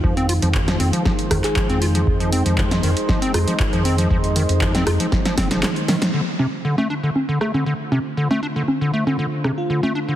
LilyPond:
<<
  \new Staff \with { instrumentName = "FM electric piano" } { \time 4/4 \key f \lydian \tempo 4 = 118 r2 r8. aes'4~ aes'16~ | aes'16 r2. r8. | r1 | r1 |
r2 r8. f'4~ f'16 | }
  \new Staff \with { instrumentName = "Analog synth pad" } { \time 4/4 \key f \lydian << { <ees aes c''>1~ | <ees aes c''>1~ | <ees aes c''>1 | <d a c''>1~ |
<d a c''>1 | } \\ { f'1 | ees'1~ | ees'1 | f'1~ |
f'1 | } >> }
  \new Staff \with { instrumentName = "Acid bass" } { \clef bass \time 4/4 \key f \lydian f16 c'16 f'16 f16 r16 f16 c'16 f16 f16 r16 ees16 r16 f16 c'16 f'16 f16 | r16 f16 c'16 f16 f16 r16 ees16 r16 f16 c'16 f'16 f16 r16 f16 c'16 f16 | f16 r16 ees16 r16 f16 c'16 f'16 f16 r16 f16 c'16 f16 f16 r16 ees16 r16 | d16 r16 c16 r16 d16 a16 d'16 d16 r16 d16 a16 d16 d16 r16 c16 r16 |
d16 a16 d'16 d16 r16 d16 a16 d16 d16 r16 c16 r16 d16 a16 d'16 d16 | }
  \new Staff \with { instrumentName = "Analog synth bass" } { \clef bass \time 4/4 \key f \lydian f,8. f,8. f,16 r8. f,16 r8 f,8. | f,8. f,8. f,16 r8. f,16 r8 f,8. | f,8. f,8. f,16 r8. f,,8 r4 | r1 |
r1 | }
  \new DrumStaff \with { instrumentName = "Drums" } \drummode { \time 4/4 bd16 hh16 hho16 hh16 <hc bd>16 <hh sn>16 hho16 hh16 <bd sn>16 hh16 <hho bd ss>16 <hc hh>16 <hc bd>16 hh16 hho16 hh16 | bd16 hh16 hho16 hh16 <hc bd>16 <hh sn>16 hho16 hh16 <bd sn>16 hh16 <hho ss>16 hh16 <hc bd>16 hh16 hho16 hh16 | bd16 hh16 hho16 hh16 <hc bd>16 <hh sn>16 <hho ss>16 hh16 <bd sn>16 <hh sn>16 <hho bd sn>16 <hh sn>16 <hc sn>16 hh16 <hho sn>16 <hh sn>16 | r8 cgho8 r16 cgho8. cgho8 ss16 cgho16 r8 cgho8 |
r16 cgho8. cgho8. cgho16 r8 <cgho ss>8 r16 cgho8. | }
>>